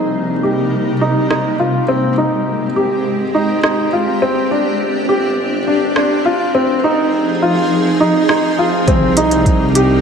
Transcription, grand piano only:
0.00 0.33 D#4 medium
0.43 0.91 G4 medium
1.01 1.25 D#4 medium
1.30 1.54 D#4 medium
1.59 1.83 F4 medium
1.88 2.12 C4 medium
2.18 2.66 D#4 medium
2.76 3.24 G4 medium
3.35 3.58 D#4 medium
3.63 3.87 D#4 medium
3.93 4.17 F4 medium
4.22 4.46 C4 medium
4.51 4.99 D4 medium
5.09 5.57 G4 medium
5.67 5.91 D4 medium
5.97 6.20 D4 medium
6.26 6.49 F4 medium
6.55 6.79 C4 medium
6.84 7.32 D#4 medium
7.42 7.90 F4 medium
8.00 8.24 D#4 medium
8.29 8.53 D#4 medium
8.59 8.83 F4 medium
8.88 9.12 C4 medium
9.17 9.65 D#4 medium
9.75 10.01 G4 medium

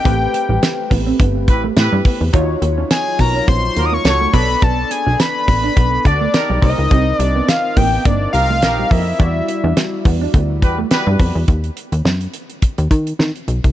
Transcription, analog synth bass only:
0.05 0.28 A1 loud
0.49 0.59 A1 loud
0.91 1.13 A1 medium
1.20 1.49 G1 loud
1.48 1.70 A1 medium
1.77 1.89 A2 loud
1.93 2.02 G2 loud
2.21 2.31 E2 medium
2.34 2.56 D#2 loud
2.62 2.84 D#2 loud
3.19 3.42 B1 loud
3.48 3.70 A#1 loud
3.77 3.99 D#2 medium
4.05 4.27 C#2 loud
4.34 4.56 B1 medium
4.62 4.85 B1 loud
5.07 5.17 B1 medium
5.48 5.70 A1 medium
5.77 5.99 B1 loud
6.05 6.27 D2 loud
6.50 6.60 B1 loud
6.62 6.75 C2 loud
6.78 6.88 C#2 loud
6.91 7.13 C2 loud
7.19 7.42 C2 loud
7.77 7.99 A1 loud
8.05 8.28 G1 loud
8.34 8.64 C2 medium
8.62 8.85 A#1 loud
8.91 9.13 F2 loud
9.20 9.42 E2 loud
9.64 9.74 E2 loud
10.05 10.28 E2 medium
10.34 10.64 D2 loud
10.62 10.85 E2 medium
11.07 11.17 G2 loud
11.20 11.32 F2 medium
11.35 11.45 E2 medium
11.48 11.70 D#2 loud
11.92 12.02 D#2 medium
12.05 12.27 F#2 medium
12.78 12.88 D#2 loud
12.91 13.13 D#3 medium
13.19 13.32 D#3 medium
13.48 13.60 B1 medium
13.64 13.72 C2 medium

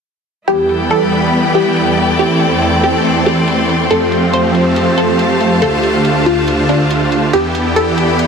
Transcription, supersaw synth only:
0.48 3.87 E2 medium
0.48 2.17 E3 medium
0.48 2.17 G3 medium
0.48 2.17 B3 medium
2.19 3.89 E3 medium
2.19 3.89 A3 medium
2.19 3.89 C4 medium
3.91 5.60 F2 medium
3.91 5.60 F3 medium
3.91 7.30 A3 medium
3.91 5.60 C4 medium
5.62 7.32 D2 medium
5.62 7.32 D3 medium
5.62 7.32 F4 medium
7.34 8.27 E2 medium
7.34 8.27 E3 medium
7.34 8.27 B3 medium
7.34 8.27 G4 medium

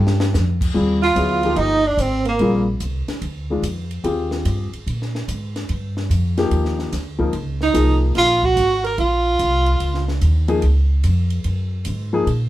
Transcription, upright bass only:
0.00 0.32 G2 loud
0.34 0.74 F2 medium
0.75 1.15 D#2 medium
1.16 1.56 D2 medium
1.56 1.96 G1 medium
1.97 2.37 G#1 medium
2.40 2.79 A#1 medium
2.80 3.06 C2 medium
3.08 muted upright bass stroke soft
3.22 3.61 D2 medium
3.62 4.02 F2 medium
4.04 4.44 D#2 medium
4.45 4.71 G2 medium
4.73 muted upright bass stroke soft
4.87 5.26 A#2 medium
5.28 5.68 G#2 medium
5.69 6.09 G2 medium
6.10 6.50 F2 medium
6.51 6.91 D#2 medium
6.93 7.32 D2 medium
7.33 7.73 C#2 medium
7.75 8.14 C2 medium
8.16 8.56 A#1 medium
8.56 8.96 G#1 medium
8.98 9.38 A#1 medium
9.39 9.79 C2 medium
9.80 10.20 C#2 medium
10.21 10.61 D#2 medium
10.62 11.02 C#2 medium
11.04 11.44 F2 medium
11.45 11.85 F#2 medium
11.86 12.26 G#2 medium
12.27 12.49 A#2 medium

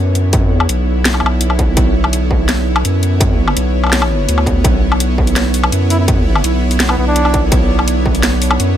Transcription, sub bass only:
0.00 0.47 F#2 loud
0.47 0.68 F2 loud
0.69 1.22 B1 medium
1.23 1.76 B1 medium
1.77 2.83 B1 medium
2.85 3.55 F#2 loud
3.57 4.27 B1 medium
4.28 4.63 D2 loud
4.64 5.71 B1 loud
5.72 6.43 F#2 loud
6.44 6.96 B1 loud
6.98 7.50 B1 loud
7.52 8.58 B1 loud
8.60 8.77 F#2 loud

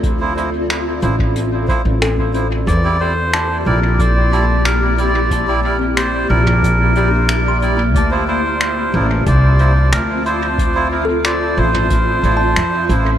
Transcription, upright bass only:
0.00 0.99 D2 medium
1.03 1.65 A1 medium
1.85 2.64 A1 medium
2.67 3.63 E2 loud
3.66 6.27 A#1 medium
6.30 7.95 A#1 medium
7.95 8.90 D2 loud
8.94 9.23 A1 medium
9.26 9.89 C2 loud
9.93 11.54 D2 medium
11.57 12.20 A1 medium
12.23 12.56 A1 medium
12.56 12.85 F2 medium
12.89 13.18 A1 medium

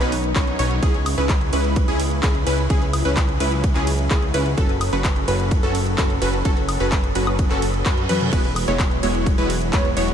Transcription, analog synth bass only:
0.00 0.33 B1 medium
0.59 0.80 B1 medium
1.18 1.51 C#2 loud
1.53 1.86 C#2 loud
1.88 2.21 C#2 loud
2.23 2.44 C#2 loud
2.47 2.68 C#2 medium
2.70 3.03 C#2 loud
3.05 3.38 C#2 loud
3.40 3.73 C#2 loud
3.75 4.08 C#2 loud
4.34 4.55 C#2 medium
4.58 4.90 F#1 loud
4.93 5.26 F#1 loud
5.28 5.61 F#1 loud
5.63 5.96 F#1 loud
6.22 6.43 F#1 medium
6.80 7.13 F#1 loud
7.15 7.48 F#1 loud
7.51 7.83 F#1 medium
7.86 8.07 F#2 loud
8.09 8.30 F#2 medium
8.33 8.65 E1 medium
8.68 9.01 E1 loud
9.03 9.36 E1 loud
9.38 9.71 E1 loud
9.73 9.94 E1 loud
9.97 10.14 E1 medium

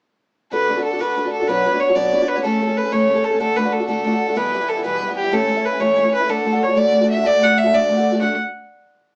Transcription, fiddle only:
0.52 0.82 B4 medium
0.84 1.02 A4 medium
1.01 1.32 B4 medium
1.32 1.49 A4 medium
1.48 1.81 B4 medium
1.80 1.96 C#5 medium
1.95 2.30 D5 medium
2.28 2.43 B4 medium
2.44 2.79 A4 medium
2.77 2.93 B4 medium
2.92 3.26 C#5 medium
3.24 3.40 A4 medium
3.40 3.58 A4 medium
3.56 3.68 B4 medium
3.68 3.74 B4 medium
3.72 3.87 A4 medium
3.88 4.38 A4 medium
4.37 4.70 B4 medium
4.69 4.84 A4 medium
4.84 5.15 B4 medium
5.17 5.35 G4 medium
5.33 5.67 A4 medium
5.66 5.82 B4 medium
5.80 6.13 C#5 medium
6.14 6.31 B4 medium
6.30 6.64 A4 medium
6.63 6.79 C#5 medium
6.77 7.10 D5 medium
7.11 7.28 E5 medium
7.26 7.45 D5 medium
7.43 7.59 F#5 medium
7.58 7.76 E5 medium
7.74 8.21 D5 medium
8.21 8.37 F#5 medium

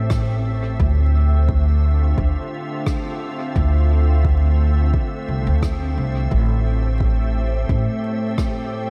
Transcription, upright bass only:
0.00 0.77 A1 medium
0.80 2.15 D2 medium
2.18 2.34 D2 medium
3.56 4.91 D2 medium
5.28 5.44 C2 medium
5.47 5.94 D2 medium
5.97 6.28 C2 medium
6.32 7.66 A1 medium
7.69 7.85 A1 medium

